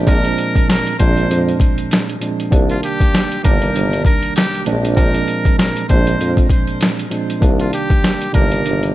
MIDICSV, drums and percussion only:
0, 0, Header, 1, 2, 480
1, 0, Start_track
1, 0, Key_signature, -3, "minor"
1, 0, Tempo, 612245
1, 58, Time_signature, 4, 2, 24, 8
1, 7014, End_track
2, 0, Start_track
2, 0, Title_t, "Drums"
2, 57, Note_on_c, 9, 36, 115
2, 60, Note_on_c, 9, 42, 93
2, 135, Note_off_c, 9, 36, 0
2, 139, Note_off_c, 9, 42, 0
2, 193, Note_on_c, 9, 42, 51
2, 271, Note_off_c, 9, 42, 0
2, 299, Note_on_c, 9, 42, 81
2, 377, Note_off_c, 9, 42, 0
2, 435, Note_on_c, 9, 36, 91
2, 441, Note_on_c, 9, 42, 47
2, 513, Note_off_c, 9, 36, 0
2, 519, Note_off_c, 9, 42, 0
2, 545, Note_on_c, 9, 38, 121
2, 547, Note_on_c, 9, 42, 99
2, 624, Note_off_c, 9, 38, 0
2, 625, Note_off_c, 9, 42, 0
2, 682, Note_on_c, 9, 42, 59
2, 761, Note_off_c, 9, 42, 0
2, 780, Note_on_c, 9, 42, 78
2, 785, Note_on_c, 9, 36, 98
2, 858, Note_off_c, 9, 42, 0
2, 864, Note_off_c, 9, 36, 0
2, 918, Note_on_c, 9, 42, 51
2, 997, Note_off_c, 9, 42, 0
2, 1027, Note_on_c, 9, 42, 92
2, 1105, Note_off_c, 9, 42, 0
2, 1164, Note_on_c, 9, 42, 50
2, 1243, Note_off_c, 9, 42, 0
2, 1253, Note_on_c, 9, 36, 97
2, 1261, Note_on_c, 9, 42, 84
2, 1331, Note_off_c, 9, 36, 0
2, 1339, Note_off_c, 9, 42, 0
2, 1394, Note_on_c, 9, 42, 51
2, 1473, Note_off_c, 9, 42, 0
2, 1499, Note_on_c, 9, 42, 107
2, 1513, Note_on_c, 9, 38, 122
2, 1578, Note_off_c, 9, 42, 0
2, 1592, Note_off_c, 9, 38, 0
2, 1643, Note_on_c, 9, 42, 60
2, 1721, Note_off_c, 9, 42, 0
2, 1736, Note_on_c, 9, 42, 75
2, 1815, Note_off_c, 9, 42, 0
2, 1880, Note_on_c, 9, 42, 58
2, 1959, Note_off_c, 9, 42, 0
2, 1977, Note_on_c, 9, 36, 113
2, 1981, Note_on_c, 9, 42, 93
2, 2056, Note_off_c, 9, 36, 0
2, 2059, Note_off_c, 9, 42, 0
2, 2113, Note_on_c, 9, 42, 53
2, 2191, Note_off_c, 9, 42, 0
2, 2220, Note_on_c, 9, 42, 83
2, 2299, Note_off_c, 9, 42, 0
2, 2355, Note_on_c, 9, 36, 91
2, 2361, Note_on_c, 9, 42, 50
2, 2434, Note_off_c, 9, 36, 0
2, 2440, Note_off_c, 9, 42, 0
2, 2466, Note_on_c, 9, 38, 120
2, 2467, Note_on_c, 9, 42, 99
2, 2544, Note_off_c, 9, 38, 0
2, 2546, Note_off_c, 9, 42, 0
2, 2602, Note_on_c, 9, 42, 59
2, 2681, Note_off_c, 9, 42, 0
2, 2701, Note_on_c, 9, 42, 80
2, 2706, Note_on_c, 9, 36, 98
2, 2779, Note_off_c, 9, 42, 0
2, 2784, Note_off_c, 9, 36, 0
2, 2838, Note_on_c, 9, 42, 53
2, 2916, Note_off_c, 9, 42, 0
2, 2946, Note_on_c, 9, 42, 96
2, 3024, Note_off_c, 9, 42, 0
2, 3083, Note_on_c, 9, 42, 51
2, 3161, Note_off_c, 9, 42, 0
2, 3173, Note_on_c, 9, 36, 98
2, 3181, Note_on_c, 9, 42, 86
2, 3251, Note_off_c, 9, 36, 0
2, 3259, Note_off_c, 9, 42, 0
2, 3314, Note_on_c, 9, 42, 54
2, 3392, Note_off_c, 9, 42, 0
2, 3418, Note_on_c, 9, 42, 106
2, 3432, Note_on_c, 9, 38, 125
2, 3496, Note_off_c, 9, 42, 0
2, 3511, Note_off_c, 9, 38, 0
2, 3564, Note_on_c, 9, 42, 61
2, 3642, Note_off_c, 9, 42, 0
2, 3655, Note_on_c, 9, 42, 74
2, 3734, Note_off_c, 9, 42, 0
2, 3800, Note_on_c, 9, 42, 57
2, 3879, Note_off_c, 9, 42, 0
2, 3897, Note_on_c, 9, 36, 111
2, 3900, Note_on_c, 9, 42, 93
2, 3976, Note_off_c, 9, 36, 0
2, 3978, Note_off_c, 9, 42, 0
2, 4033, Note_on_c, 9, 42, 53
2, 4112, Note_off_c, 9, 42, 0
2, 4137, Note_on_c, 9, 42, 85
2, 4215, Note_off_c, 9, 42, 0
2, 4275, Note_on_c, 9, 36, 96
2, 4280, Note_on_c, 9, 42, 47
2, 4353, Note_off_c, 9, 36, 0
2, 4359, Note_off_c, 9, 42, 0
2, 4384, Note_on_c, 9, 38, 117
2, 4385, Note_on_c, 9, 42, 97
2, 4462, Note_off_c, 9, 38, 0
2, 4464, Note_off_c, 9, 42, 0
2, 4521, Note_on_c, 9, 42, 62
2, 4600, Note_off_c, 9, 42, 0
2, 4620, Note_on_c, 9, 42, 81
2, 4626, Note_on_c, 9, 36, 97
2, 4699, Note_off_c, 9, 42, 0
2, 4704, Note_off_c, 9, 36, 0
2, 4759, Note_on_c, 9, 42, 52
2, 4837, Note_off_c, 9, 42, 0
2, 4867, Note_on_c, 9, 42, 95
2, 4945, Note_off_c, 9, 42, 0
2, 4995, Note_on_c, 9, 36, 106
2, 5001, Note_on_c, 9, 42, 50
2, 5073, Note_off_c, 9, 36, 0
2, 5080, Note_off_c, 9, 42, 0
2, 5093, Note_on_c, 9, 36, 100
2, 5099, Note_on_c, 9, 42, 82
2, 5171, Note_off_c, 9, 36, 0
2, 5178, Note_off_c, 9, 42, 0
2, 5232, Note_on_c, 9, 42, 53
2, 5311, Note_off_c, 9, 42, 0
2, 5337, Note_on_c, 9, 42, 108
2, 5351, Note_on_c, 9, 38, 125
2, 5416, Note_off_c, 9, 42, 0
2, 5430, Note_off_c, 9, 38, 0
2, 5483, Note_on_c, 9, 42, 60
2, 5561, Note_off_c, 9, 42, 0
2, 5578, Note_on_c, 9, 42, 74
2, 5656, Note_off_c, 9, 42, 0
2, 5722, Note_on_c, 9, 42, 56
2, 5801, Note_off_c, 9, 42, 0
2, 5818, Note_on_c, 9, 36, 110
2, 5822, Note_on_c, 9, 42, 95
2, 5896, Note_off_c, 9, 36, 0
2, 5900, Note_off_c, 9, 42, 0
2, 5955, Note_on_c, 9, 42, 54
2, 6034, Note_off_c, 9, 42, 0
2, 6060, Note_on_c, 9, 42, 83
2, 6139, Note_off_c, 9, 42, 0
2, 6195, Note_on_c, 9, 36, 89
2, 6202, Note_on_c, 9, 42, 50
2, 6274, Note_off_c, 9, 36, 0
2, 6280, Note_off_c, 9, 42, 0
2, 6305, Note_on_c, 9, 38, 116
2, 6306, Note_on_c, 9, 42, 99
2, 6383, Note_off_c, 9, 38, 0
2, 6384, Note_off_c, 9, 42, 0
2, 6441, Note_on_c, 9, 42, 62
2, 6519, Note_off_c, 9, 42, 0
2, 6539, Note_on_c, 9, 42, 80
2, 6545, Note_on_c, 9, 36, 99
2, 6617, Note_off_c, 9, 42, 0
2, 6624, Note_off_c, 9, 36, 0
2, 6677, Note_on_c, 9, 42, 51
2, 6755, Note_off_c, 9, 42, 0
2, 6786, Note_on_c, 9, 42, 95
2, 6865, Note_off_c, 9, 42, 0
2, 6923, Note_on_c, 9, 42, 50
2, 7001, Note_off_c, 9, 42, 0
2, 7014, End_track
0, 0, End_of_file